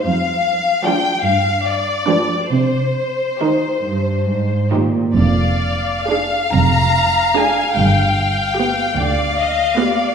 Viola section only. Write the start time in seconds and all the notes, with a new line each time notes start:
0.84 F3 D4
2.08 F3 D4
3.41 D#3 D#4
4.73 D#3 D#4
6.08 D4 G#4
7.36 D4 G#4
8.58 B3 G4
9.80 B3 G4